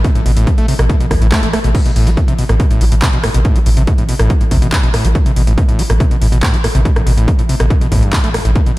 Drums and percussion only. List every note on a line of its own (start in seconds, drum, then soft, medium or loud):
0.04 kick loud
0.04 closed hi-hat medium
0.15 closed hi-hat medium
0.26 open hi-hat loud
0.37 closed hi-hat medium
0.47 kick loud
0.47 closed hi-hat medium
0.58 closed hi-hat medium
0.68 open hi-hat loud
0.79 cross-stick loud
0.79 closed hi-hat medium
0.90 kick loud
0.90 closed hi-hat medium
1.00 closed hi-hat medium
1.11 kick medium
1.11 cross-stick medium
1.11 open hi-hat loud
1.22 closed hi-hat medium
1.32 kick loud
1.32 clap loud
1.32 open hi-hat medium
1.43 closed hi-hat medium
1.53 cross-stick loud
1.53 open hi-hat loud
1.64 closed hi-hat medium
1.75 kick loud
1.75 closed hi-hat medium
1.75 crash medium
1.86 closed hi-hat medium
1.96 open hi-hat loud
2.07 closed hi-hat medium
2.17 kick loud
2.17 closed hi-hat medium
2.28 closed hi-hat medium
2.39 open hi-hat loud
2.49 cross-stick medium
2.49 closed hi-hat medium
2.60 kick loud
2.60 closed hi-hat medium
2.71 closed hi-hat medium
2.81 open hi-hat loud
2.92 closed hi-hat medium
3.02 kick loud
3.02 clap loud
3.02 closed hi-hat medium
3.13 closed hi-hat medium
3.24 cross-stick loud
3.24 open hi-hat loud
3.34 closed hi-hat medium
3.45 kick loud
3.45 closed hi-hat medium
3.56 closed hi-hat medium
3.66 open hi-hat loud
3.77 closed hi-hat medium
3.87 kick loud
3.87 closed hi-hat medium
3.98 closed hi-hat medium
4.09 open hi-hat loud
4.19 cross-stick medium
4.19 closed hi-hat medium
4.30 kick loud
4.30 closed hi-hat medium
4.41 closed hi-hat medium
4.51 kick medium
4.51 open hi-hat loud
4.62 closed hi-hat medium
4.73 kick loud
4.73 clap loud
4.73 open hi-hat medium
4.83 closed hi-hat medium
4.94 cross-stick medium
4.94 open hi-hat loud
5.05 closed hi-hat medium
5.15 kick loud
5.15 closed hi-hat medium
5.26 closed hi-hat medium
5.36 open hi-hat loud
5.47 closed hi-hat medium
5.58 kick loud
5.58 closed hi-hat medium
5.69 closed hi-hat medium
5.79 open hi-hat loud
5.90 cross-stick medium
5.90 closed hi-hat medium
6.00 kick loud
6.00 closed hi-hat medium
6.11 closed hi-hat medium
6.22 open hi-hat loud
6.32 closed hi-hat medium
6.43 kick loud
6.43 clap loud
6.43 closed hi-hat medium
6.54 closed hi-hat medium
6.64 cross-stick medium
6.64 open hi-hat loud
6.75 closed hi-hat medium
6.85 kick loud
6.85 closed hi-hat medium
6.96 cross-stick medium
6.96 closed hi-hat medium
7.07 open hi-hat loud
7.18 closed hi-hat medium
7.28 kick loud
7.28 closed hi-hat medium
7.39 closed hi-hat medium
7.49 open hi-hat loud
7.60 cross-stick medium
7.60 closed hi-hat medium
7.70 kick loud
7.70 closed hi-hat medium
7.81 closed hi-hat medium
7.92 kick medium
7.92 open hi-hat loud
8.03 closed hi-hat medium
8.13 kick loud
8.13 clap loud
8.13 open hi-hat medium
8.24 closed hi-hat medium
8.34 cross-stick medium
8.34 open hi-hat loud
8.45 closed hi-hat medium
8.56 kick loud
8.56 closed hi-hat medium
8.66 closed hi-hat medium